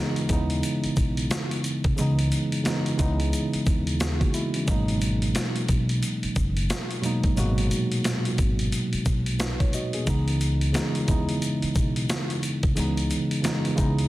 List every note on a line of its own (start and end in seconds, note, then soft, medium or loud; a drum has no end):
0.00 0.28 C#3 medium
0.00 1.97 E3 medium
0.00 0.30 G#3 medium
0.00 0.31 B3 medium
0.00 0.33 D#4 loud
0.00 4.01 G#4 medium
0.16 closed hi-hat medium
0.28 0.61 D#2 medium
0.28 1.32 C#3 medium
0.28 1.33 G#3 medium
0.28 1.33 B3 medium
0.28 1.32 E4 medium
0.28 kick medium
0.28 closed hi-hat medium
0.28 shaker soft
0.33 1.34 D#4 loud
0.50 closed hi-hat medium
0.63 closed hi-hat medium
0.63 shaker medium
0.84 muted upright bass stroke soft
0.84 closed hi-hat soft
0.96 1.28 B1 medium
0.96 kick loud
0.96 closed hi-hat medium
0.96 shaker soft
1.17 closed hi-hat medium
1.31 snare loud
1.31 closed hi-hat loud
1.31 shaker medium
1.51 closed hi-hat medium
1.64 closed hi-hat medium
1.64 shaker medium
1.84 1.97 C2 medium
1.84 kick loud
1.84 closed hi-hat medium
1.96 2.29 C#2 loud
1.96 2.52 C#3 medium
1.96 2.53 E3 medium
1.96 2.53 G#3 medium
1.96 2.54 B3 medium
1.96 closed hi-hat medium
1.96 shaker medium
2.01 2.54 D#4 loud
2.19 closed hi-hat medium
2.32 closed hi-hat medium
2.32 shaker medium
2.52 closed hi-hat medium
2.63 2.92 C#3 medium
2.63 2.92 E3 medium
2.63 2.93 G#3 medium
2.63 2.93 B3 medium
2.63 snare loud
2.63 closed hi-hat medium
2.63 shaker medium
2.68 2.94 D#4 medium
2.86 closed hi-hat medium
2.97 3.30 C#2 medium
2.97 4.01 C#3 medium
2.97 4.00 G#3 medium
2.97 4.00 B3 medium
2.97 4.00 E4 medium
2.97 kick medium
2.97 closed hi-hat medium
2.97 shaker soft
3.02 4.02 D#4 loud
3.20 closed hi-hat medium
3.33 closed hi-hat medium
3.33 shaker medium
3.53 muted upright bass stroke medium
3.53 closed hi-hat soft
3.66 4.17 D#2 medium
3.66 kick loud
3.66 closed hi-hat medium
3.66 shaker soft
3.87 closed hi-hat medium
4.00 4.20 B3 medium
4.00 4.20 G#4 medium
4.00 snare loud
4.00 closed hi-hat loud
4.00 shaker medium
4.20 4.33 A#3 medium
4.20 4.33 F#4 medium
4.20 kick medium
4.20 closed hi-hat medium
4.34 4.54 G#3 medium
4.34 4.54 E4 medium
4.34 closed hi-hat medium
4.34 shaker medium
4.54 4.87 E3 medium
4.54 4.87 C#4 medium
4.54 closed hi-hat medium
4.66 5.31 G#1 loud
4.66 5.70 B2 medium
4.66 5.71 F#3 medium
4.66 5.71 G#3 medium
4.66 5.72 A#3 medium
4.66 kick loud
4.66 closed hi-hat medium
4.66 shaker medium
4.71 5.72 D#4 loud
4.88 closed hi-hat medium
5.01 closed hi-hat medium
5.01 shaker soft
5.22 closed hi-hat medium
5.35 snare loud
5.35 closed hi-hat medium
5.35 shaker medium
5.56 closed hi-hat medium
5.69 6.00 B1 loud
5.69 kick medium
5.69 closed hi-hat medium
5.69 shaker soft
5.89 closed hi-hat medium
6.03 closed hi-hat medium
6.03 shaker medium
6.23 muted upright bass stroke medium
6.23 closed hi-hat soft
6.36 6.67 F#1 medium
6.36 kick loud
6.36 closed hi-hat medium
6.36 shaker soft
6.57 closed hi-hat medium
6.70 snare loud
6.70 closed hi-hat loud
6.70 shaker medium
6.91 closed hi-hat medium
7.01 7.30 B2 medium
7.01 7.30 F#3 medium
7.01 7.31 G#3 medium
7.01 7.32 A#3 medium
7.01 closed hi-hat medium
7.01 shaker medium
7.06 7.32 D#4 loud
7.24 7.36 G1 medium
7.24 kick loud
7.24 closed hi-hat medium
7.35 7.69 G#1 loud
7.35 7.44 A#2 medium
7.35 8.40 F#3 medium
7.35 8.40 G#3 medium
7.35 8.41 A#3 medium
7.35 closed hi-hat medium
7.35 shaker medium
7.39 8.42 B2 medium
7.39 8.41 F#4 loud
7.58 closed hi-hat medium
7.71 closed hi-hat medium
7.71 shaker soft
7.92 closed hi-hat medium
8.04 snare loud
8.04 closed hi-hat medium
8.04 shaker medium
8.25 closed hi-hat medium
8.38 8.70 G#1 medium
8.38 kick medium
8.38 closed hi-hat medium
8.38 shaker soft
8.59 closed hi-hat medium
8.72 closed hi-hat medium
8.72 shaker medium
8.93 muted upright bass stroke soft
8.93 closed hi-hat soft
9.06 9.56 B1 medium
9.06 kick loud
9.06 closed hi-hat medium
9.06 shaker medium
9.26 closed hi-hat medium
9.39 9.59 D#4 medium
9.39 9.59 B4 medium
9.39 snare loud
9.39 closed hi-hat loud
9.39 shaker medium
9.60 9.73 C#5 medium
9.60 kick loud
9.60 closed hi-hat medium
9.73 9.94 F#4 medium
9.73 9.93 D#5 medium
9.73 closed hi-hat medium
9.73 shaker medium
9.93 10.07 B3 medium
9.93 10.26 G#4 medium
9.93 closed hi-hat medium
10.05 10.71 C#2 loud
10.05 10.61 C#3 medium
10.05 10.61 E3 medium
10.05 10.62 G#3 medium
10.05 10.63 B3 medium
10.05 kick loud
10.05 closed hi-hat medium
10.05 shaker medium
10.10 10.63 D#4 loud
10.28 closed hi-hat medium
10.41 closed hi-hat medium
10.41 shaker medium
10.61 closed hi-hat medium
10.72 11.01 C#3 medium
10.72 11.01 E3 medium
10.72 11.02 G#3 medium
10.72 11.02 B3 medium
10.72 snare loud
10.72 closed hi-hat medium
10.72 shaker medium
10.77 11.03 D#4 medium
10.95 closed hi-hat medium
11.07 11.39 D#2 medium
11.07 12.10 C#3 medium
11.07 12.11 G#3 medium
11.07 12.12 B3 medium
11.07 12.11 E4 medium
11.07 kick medium
11.07 closed hi-hat medium
11.07 shaker soft
11.11 12.13 D#4 loud
11.29 closed hi-hat medium
11.42 closed hi-hat medium
11.42 shaker medium
11.62 muted upright bass stroke soft
11.62 closed hi-hat soft
11.75 12.07 B1 medium
11.75 kick loud
11.75 closed hi-hat medium
11.75 shaker soft
11.96 closed hi-hat medium
12.09 snare loud
12.09 closed hi-hat loud
12.09 shaker medium
12.30 closed hi-hat medium
12.43 closed hi-hat medium
12.43 shaker medium
12.63 12.76 C2 medium
12.63 kick medium
12.63 closed hi-hat medium
12.75 13.08 C#2 loud
12.75 13.31 C#3 medium
12.75 13.31 E3 medium
12.75 13.32 G#3 medium
12.75 13.32 B3 medium
12.75 closed hi-hat medium
12.75 shaker medium
12.79 13.33 D#4 loud
12.97 closed hi-hat medium
13.10 closed hi-hat medium
13.10 shaker medium
13.31 closed hi-hat medium
13.42 13.70 C#3 medium
13.42 13.71 E3 medium
13.42 13.72 G#3 medium
13.42 13.72 B3 medium
13.42 snare loud
13.42 closed hi-hat medium
13.42 shaker medium
13.46 13.73 D#4 medium
13.65 closed hi-hat medium
13.76 14.08 C#2 medium
13.76 14.08 C#3 loud
13.76 14.08 G#3 medium
13.76 14.08 B3 medium
13.76 14.08 E4 medium
13.76 kick medium
13.76 closed hi-hat medium
13.76 shaker soft
13.80 14.08 D#4 loud
13.98 closed hi-hat medium